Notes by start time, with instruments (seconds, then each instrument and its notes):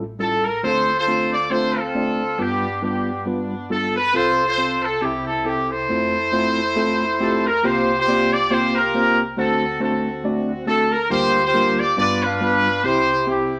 Already playing: tine electric piano A1 A2
0.19 tine electric piano G3 C#4 E4 F4 A4, horn section A4
0.45 horn section A#4
0.63 tine electric piano D2 D3 A3 C4 D4 F4 C5, horn section F4 A4 C5
0.99 horn section F4 A4 C5
1.07 tine electric piano A3 C4 D4 F4 C5
1.32 horn section D5
1.50 tine electric piano A3 C4 D4 F4 C5, horn section F4 A4 C5
1.76 horn section C4 F4 A4
1.94 tine electric piano A3 C4 D4 F4 D5
2.38 tine electric piano G2 G3 B3 D4 F4 B4, horn section B3 D4 G4
2.82 tine electric piano G3 B3 D4 F4 B4, horn section B3 D4 G4
3.26 tine electric piano G3 B3 D4 F4 B4
3.70 tine electric piano G3 B3 D4 F4 A4, horn section A4
3.96 horn section B4
4.13 tine electric piano C2 C3 C4 F4 A4, horn section F4 A4 C5
4.48 horn section F4 A4 C5
4.58 tine electric piano C4 F4 C5
4.83 horn section A4
5.01 tine electric piano C2 C3 C4 E4 G4, horn section C4 E4 G4
5.27 horn section A4
5.45 tine electric piano C4 E4 A4, horn section G4
5.71 horn section E4 A4 C5
5.89 tine electric piano F2 A3 C4 E4 F4 C5
6.32 tine electric piano A3 C4 E4 F4 C5
6.76 tine electric piano A3 C4 E4 F4 A4
7.20 tine electric piano A3 C4 E4 F4 G4, horn section A4
7.46 horn section A#4
7.63 tine electric piano C2 C3 A#3 C4 F4 G4 C5, horn section F4 G4 C5
7.99 horn section F4 G4 C5
8.07 tine electric piano A#3 C4 F4 G4 D5
8.32 horn section D5
8.50 tine electric piano A#3 C4 F4 G4 C5, horn section F4 G4 C5
8.75 horn section F4 G4 A#4
8.94 tine electric piano A#3 C4 F4 G4 C5
9.37 tine electric piano D2 D3 A3 C4 D4 F#4 C5, horn section C4 F#4 A4
9.80 tine electric piano A3 C4 D4 F#4 C5, horn section C4 F#4 A4
10.24 tine electric piano A3 C4 D4 F#4 D5
10.66 tine electric piano A3 C4 D4 F#4 A4, horn section A4
10.92 horn section A#4
11.10 tine electric piano D2 D3 G3 A#3 D4 F4 A#4, horn section F4 G4 C5
11.45 horn section F4 G4 C5
11.53 tine electric piano G3 A#3 D4 F4 A#4
11.79 horn section D5
11.97 tine electric piano G2 G3 B3 D4 F4 B4, horn section F4 B4 D5
12.23 horn section D4 F4 B4
12.41 tine electric piano G3 B3 D4 F4 B4
12.84 tine electric piano C2 C3 C4 E4 G4, horn section E4 G4 C5
13.27 tine electric piano C4 E4 G4, horn section C4 E4 G4